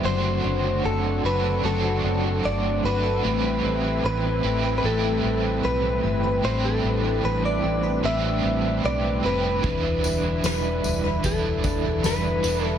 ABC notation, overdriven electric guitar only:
X:1
M:4/4
L:1/8
Q:1/4=75
K:Am
V:1 name="Overdriven electric guitar"
[^F,A,D^Fc]3 [DF] [F,A,DFc]3 [DF] | [A,,E,G,CGB]3 [G,CGB] [A,,E,G,CGB]4 | [A,,E,G,CGB]4 [A,,E,G,CGB]3 [G,CGB] | [E,G,DEB]4 [E,G,DEB]3 [DEB] |]